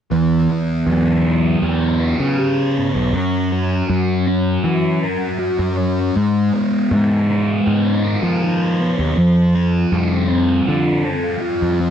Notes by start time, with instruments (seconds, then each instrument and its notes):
0.11 picked electric bass E2, distorted electric guitar E3
0.50 distorted electric guitar B3
0.87 picked electric bass E2, distorted electric guitar F#3
1.24 distorted electric guitar B3
1.62 picked electric bass E2, distorted electric guitar G4
2.00 distorted electric guitar B4
2.20 picked electric bass C#3
2.39 distorted electric guitar G4
2.77 distorted electric guitar B3
2.95 picked electric bass B1
3.13 picked electric bass F#2, distorted electric guitar F#3
3.52 distorted electric guitar C#4
3.89 picked electric bass F#2, distorted electric guitar F#3
4.28 distorted electric guitar C#4
4.64 picked electric bass E3, distorted electric guitar F#4
5.03 distorted electric guitar A#4
5.39 distorted electric guitar F#4
5.59 picked electric bass F#2
5.77 distorted electric guitar C#4
6.16 picked electric bass G#2, distorted electric guitar G#3
6.53 distorted electric guitar B3
6.91 picked electric bass G#2, distorted electric guitar G#3
7.29 distorted electric guitar B3
7.67 picked electric bass G#2, distorted electric guitar D#4
8.05 distorted electric guitar A#4
8.23 picked electric bass F3
8.43 distorted electric guitar D#4
8.80 distorted electric guitar B3
8.99 picked electric bass D#2
9.17 picked electric bass F2, distorted electric guitar F3
9.55 distorted electric guitar C4
9.92 picked electric bass F2, distorted electric guitar G3
10.29 distorted electric guitar C4
10.67 picked electric bass D3, distorted electric guitar F4
11.04 distorted electric guitar A4
11.41 distorted electric guitar F4
11.62 picked electric bass F2
11.80 distorted electric guitar C4